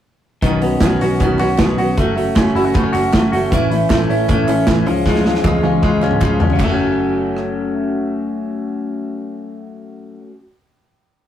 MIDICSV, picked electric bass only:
0, 0, Header, 1, 2, 480
1, 0, Start_track
1, 0, Tempo, 385852
1, 526, Time_signature, 4, 2, 24, 8
1, 14027, End_track
2, 0, Start_track
2, 0, Title_t, "Picked electric bass"
2, 0, Program_c, 0, 34
2, 529, Note_on_c, 0, 35, 105
2, 923, Note_off_c, 0, 35, 0
2, 1008, Note_on_c, 0, 35, 91
2, 1205, Note_off_c, 0, 35, 0
2, 1258, Note_on_c, 0, 35, 92
2, 1451, Note_off_c, 0, 35, 0
2, 1500, Note_on_c, 0, 35, 99
2, 1692, Note_off_c, 0, 35, 0
2, 1739, Note_on_c, 0, 35, 91
2, 1932, Note_off_c, 0, 35, 0
2, 1977, Note_on_c, 0, 35, 83
2, 2171, Note_off_c, 0, 35, 0
2, 2210, Note_on_c, 0, 35, 96
2, 2407, Note_off_c, 0, 35, 0
2, 2457, Note_on_c, 0, 30, 100
2, 2848, Note_off_c, 0, 30, 0
2, 2939, Note_on_c, 0, 30, 89
2, 3132, Note_off_c, 0, 30, 0
2, 3175, Note_on_c, 0, 30, 82
2, 3370, Note_off_c, 0, 30, 0
2, 3424, Note_on_c, 0, 30, 94
2, 3615, Note_off_c, 0, 30, 0
2, 3662, Note_on_c, 0, 30, 95
2, 3854, Note_off_c, 0, 30, 0
2, 3903, Note_on_c, 0, 30, 85
2, 4094, Note_off_c, 0, 30, 0
2, 4141, Note_on_c, 0, 30, 97
2, 4333, Note_off_c, 0, 30, 0
2, 4380, Note_on_c, 0, 33, 99
2, 4769, Note_off_c, 0, 33, 0
2, 4857, Note_on_c, 0, 33, 97
2, 5050, Note_off_c, 0, 33, 0
2, 5087, Note_on_c, 0, 33, 95
2, 5285, Note_off_c, 0, 33, 0
2, 5341, Note_on_c, 0, 33, 119
2, 5533, Note_off_c, 0, 33, 0
2, 5572, Note_on_c, 0, 33, 100
2, 5767, Note_off_c, 0, 33, 0
2, 5815, Note_on_c, 0, 33, 95
2, 6050, Note_off_c, 0, 33, 0
2, 6050, Note_on_c, 0, 37, 96
2, 6639, Note_off_c, 0, 37, 0
2, 6774, Note_on_c, 0, 37, 99
2, 6967, Note_off_c, 0, 37, 0
2, 7012, Note_on_c, 0, 37, 110
2, 7206, Note_off_c, 0, 37, 0
2, 7253, Note_on_c, 0, 37, 103
2, 7447, Note_off_c, 0, 37, 0
2, 7492, Note_on_c, 0, 37, 103
2, 7686, Note_off_c, 0, 37, 0
2, 7726, Note_on_c, 0, 37, 101
2, 7922, Note_off_c, 0, 37, 0
2, 7975, Note_on_c, 0, 37, 89
2, 8168, Note_off_c, 0, 37, 0
2, 8205, Note_on_c, 0, 30, 97
2, 12712, Note_off_c, 0, 30, 0
2, 14027, End_track
0, 0, End_of_file